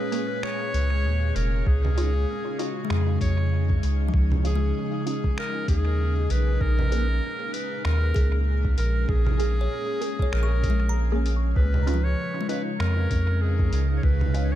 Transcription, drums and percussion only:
0.12 closed hi-hat medium
0.43 finger snap medium
0.74 closed hi-hat medium
1.36 closed hi-hat soft
1.67 kick loud
1.85 low conga medium
1.98 closed hi-hat medium
2.59 closed hi-hat medium
2.90 finger snap medium
3.21 kick loud
3.21 closed hi-hat medium
3.70 kick loud
3.83 closed hi-hat medium
4.14 kick loud
4.32 low conga medium
4.45 closed hi-hat medium
5.07 closed hi-hat medium
5.24 kick loud
5.38 finger snap loud
5.68 kick loud
5.68 closed hi-hat medium
6.30 closed hi-hat medium
6.61 kick loud
6.79 low conga medium
6.92 closed hi-hat medium
7.54 closed hi-hat medium
7.85 finger snap loud
8.16 kick loud
8.16 closed hi-hat medium
8.65 kick loud
8.78 closed hi-hat medium
9.09 kick loud
9.26 low conga medium
9.40 closed hi-hat soft
10.02 closed hi-hat soft
10.19 kick loud
10.33 finger snap medium
10.64 kick loud
10.64 closed hi-hat soft
11.26 closed hi-hat soft
11.56 kick loud
11.74 low conga medium
11.87 closed hi-hat soft
12.49 closed hi-hat soft
12.80 finger snap medium
13.11 kick loud
13.11 closed hi-hat soft
13.59 kick loud
13.73 closed hi-hat medium
14.03 kick loud
14.21 low conga medium
14.35 closed hi-hat soft

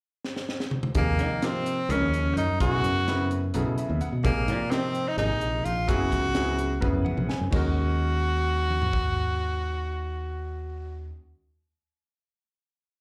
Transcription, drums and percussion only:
0.25 snare medium
0.36 snare medium
0.49 snare medium
0.60 snare medium
0.71 mid tom medium
0.83 mid tom medium
0.95 kick medium
0.95 closed hi-hat medium
1.19 closed hi-hat medium
1.42 snare medium
1.42 closed hi-hat medium
1.66 closed hi-hat medium
1.90 closed hi-hat medium
2.14 closed hi-hat medium
2.37 closed hi-hat medium
2.60 kick medium
2.60 closed hi-hat medium
2.84 closed hi-hat medium
3.08 snare medium
3.08 closed hi-hat medium
3.31 closed hi-hat medium
3.54 closed hi-hat medium
3.78 closed hi-hat soft
4.01 closed hi-hat soft
4.25 kick medium
4.25 closed hi-hat medium
4.48 closed hi-hat medium
4.72 snare loud
4.72 closed hi-hat medium
4.95 closed hi-hat medium
5.18 closed hi-hat medium
5.41 closed hi-hat soft
5.65 closed hi-hat medium
5.89 kick loud
5.89 closed hi-hat medium
6.12 kick medium
6.12 snare soft
6.12 closed hi-hat medium
6.35 snare loud
6.35 closed hi-hat medium
6.59 closed hi-hat medium
6.82 kick medium
7.06 mid tom medium
7.18 mid tom medium
7.29 snare medium
7.53 kick loud
7.53 crash medium
8.71 mid tom soft
8.82 floor tom medium
8.93 kick medium

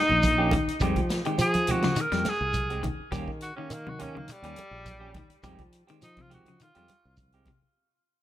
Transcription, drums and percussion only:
0.09 high conga medium
0.23 kick medium
0.23 closed hi-hat medium
0.23 high conga medium
0.23 shekere medium
0.51 kick medium
0.51 closed hi-hat soft
0.51 high conga medium
0.51 low conga medium
0.51 shekere soft
0.68 closed hi-hat soft
0.80 kick medium
0.80 closed hi-hat medium
0.80 shekere medium
0.96 kick medium
0.96 closed hi-hat soft
0.96 low conga medium
1.10 snare medium
1.10 closed hi-hat medium
1.10 shekere soft
1.25 closed hi-hat soft
1.38 closed hi-hat medium
1.38 shekere medium
1.54 closed hi-hat soft
1.54 high conga medium
1.67 closed hi-hat soft
1.67 low conga medium
1.67 shekere soft
1.82 snare medium
1.82 closed hi-hat soft
1.82 high conga medium
1.96 closed hi-hat medium
1.96 shekere medium
2.12 snare soft
2.12 closed hi-hat soft
2.25 snare medium
2.25 closed hi-hat soft
2.25 high conga medium
2.25 shekere soft
2.54 kick medium
2.54 closed hi-hat medium
2.54 high conga medium
2.54 shekere medium
2.70 closed hi-hat soft
2.83 kick medium
2.83 closed hi-hat soft
2.83 high conga medium
2.83 low conga medium
2.83 shekere soft
3.12 kick medium
3.12 closed hi-hat medium
3.12 shekere medium
3.28 kick medium
3.41 closed hi-hat soft
3.41 shekere soft
3.70 closed hi-hat medium
3.70 high conga soft
3.70 shekere medium
3.87 high conga medium
3.99 closed hi-hat soft
3.99 low conga medium
3.99 shekere soft
4.17 high conga medium
4.28 closed hi-hat medium
4.28 shekere medium
4.43 closed hi-hat soft
4.56 closed hi-hat medium
4.56 high conga medium
4.56 shekere soft
4.86 kick medium
4.86 closed hi-hat medium
4.86 high conga medium
4.86 shekere medium
5.14 kick medium
5.14 closed hi-hat soft
5.14 high conga medium
5.14 low conga medium
5.14 shekere soft
5.30 closed hi-hat soft
5.43 kick medium
5.43 closed hi-hat medium
5.43 high conga soft
5.43 shekere medium
5.58 kick medium
5.58 closed hi-hat soft
5.58 low conga medium
5.72 closed hi-hat soft
5.72 shekere soft
5.88 closed hi-hat soft
6.02 closed hi-hat medium
6.02 high conga soft
6.02 shekere medium
6.17 kick medium
6.17 closed hi-hat soft
6.17 high conga medium
6.31 closed hi-hat soft
6.31 low conga medium
6.31 shekere soft
6.46 closed hi-hat soft
6.46 high conga medium
6.60 closed hi-hat medium
6.60 shekere medium
6.75 closed hi-hat soft
6.88 closed hi-hat soft
6.88 high conga medium
6.88 shekere soft
7.17 kick medium
7.17 closed hi-hat medium
7.17 high conga medium
7.17 shekere medium
7.32 closed hi-hat soft
7.46 kick medium
7.46 closed hi-hat soft
7.46 high conga medium
7.46 low conga medium
7.46 shekere soft

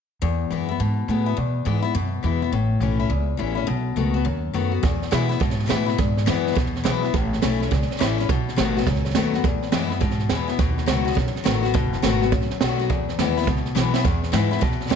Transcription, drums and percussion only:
4.83 kick loud
4.83 snare soft
5.02 snare soft
5.12 snare loud
5.12 hi-hat pedal medium
5.31 snare soft
5.41 kick loud
5.41 snare soft
5.50 snare soft
5.59 snare soft
5.65 snare soft
5.70 snare loud
5.70 hi-hat pedal medium
5.88 snare soft
5.98 kick loud
5.98 snare soft
6.17 snare soft
6.27 snare loud
6.27 hi-hat pedal medium
6.46 snare soft
6.51 snare soft
6.57 kick loud
6.57 snare soft
6.66 snare soft
6.75 snare soft
6.85 snare loud
6.85 hi-hat pedal medium
7.04 snare soft
7.14 kick loud
7.14 snare soft
7.33 snare soft
7.42 snare loud
7.42 hi-hat pedal medium
7.62 snare soft
7.72 kick loud
7.72 snare soft
7.82 snare soft
7.91 snare soft
7.96 snare soft
8.01 snare loud
8.01 hi-hat pedal medium
8.19 snare soft
8.29 kick loud
8.29 snare soft
8.48 snare soft
8.58 snare loud
8.58 hi-hat pedal medium
8.77 snare soft
8.82 snare soft
8.86 kick loud
8.86 snare soft
8.95 snare soft
9.05 snare soft
9.10 snare soft
9.15 snare loud
9.15 hi-hat pedal medium
9.34 snare soft
9.44 kick loud
9.44 snare soft
9.62 snare soft
9.72 snare loud
9.72 hi-hat pedal medium
9.90 snare soft
10.01 kick loud
10.01 snare soft
10.10 snare soft
10.19 snare soft
10.29 snare loud
10.29 hi-hat pedal medium
10.48 snare soft
10.59 kick loud
10.59 snare soft
10.78 snare soft
10.87 snare loud
10.87 hi-hat pedal medium
11.07 snare soft
11.12 snare soft
11.17 kick loud
11.17 snare soft
11.27 snare soft
11.36 snare soft
11.46 snare loud
11.46 hi-hat pedal medium
11.64 snare soft
11.74 kick loud
11.74 snare soft
11.93 snare soft
12.03 snare loud
12.03 hi-hat pedal medium
12.22 snare soft
12.32 kick loud
12.32 snare soft
12.41 snare soft
12.50 snare soft
12.61 snare loud
12.61 hi-hat pedal medium
12.80 snare soft
12.90 kick loud
12.90 snare soft
13.09 snare soft
13.19 snare loud
13.19 hi-hat pedal medium
13.37 snare soft
13.42 snare soft
13.47 kick loud
13.47 snare soft
13.57 snare soft
13.65 snare soft
13.76 snare medium
13.76 hi-hat pedal medium
13.94 snare medium
14.04 kick loud
14.04 snare soft
14.23 snare soft
14.33 snare loud
14.33 hi-hat pedal medium
14.52 snare soft
14.57 snare soft
14.62 kick loud
14.62 snare soft
14.71 snare soft
14.80 snare soft
14.86 snare soft
14.91 snare loud
14.91 hi-hat pedal medium

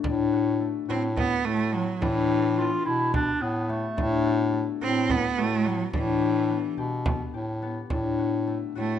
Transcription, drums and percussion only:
0.04 frame drum medium
0.89 frame drum soft
1.17 frame drum medium
2.02 frame drum medium
2.86 frame drum soft
3.14 frame drum medium
3.70 frame drum soft
3.98 frame drum medium
4.81 frame drum soft
5.10 frame drum medium
5.65 frame drum soft
5.93 frame drum medium
6.21 frame drum soft
6.77 frame drum soft
7.06 frame drum medium
7.90 frame drum soft
8.76 frame drum soft

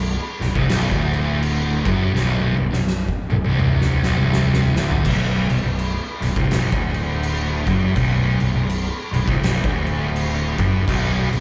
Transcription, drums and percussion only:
0.42 snare soft
0.42 crash medium
0.55 kick loud
0.69 snare loud
0.69 crash medium
0.91 kick loud
1.13 crash medium
1.42 crash medium
1.85 kick loud
1.85 crash medium
2.16 snare medium
2.37 high tom medium
2.57 high tom medium
2.73 snare medium
2.88 snare medium
3.09 kick medium
3.30 mid tom medium
3.45 mid tom medium
3.59 mid tom medium
3.82 snare medium
4.03 snare medium
4.18 mid tom medium
4.33 snare loud
4.54 snare medium
4.76 snare loud
4.90 floor tom loud
5.05 kick loud
5.05 crash loud
5.05 crash medium
5.49 crash medium
5.79 crash medium
6.22 snare soft
6.22 crash medium
6.36 kick loud
6.51 snare loud
6.51 crash medium
6.72 kick loud
6.94 crash medium
7.23 crash medium
7.67 kick medium
7.67 crash medium
7.96 kick loud
7.96 crash medium
8.40 crash medium
8.69 crash medium
9.14 crash medium
9.28 kick loud
9.43 snare loud
9.43 crash medium
9.64 kick loud
9.86 crash medium
10.16 crash medium
10.58 kick loud
10.58 crash medium
10.88 kick loud
10.88 crash medium
11.33 crash medium

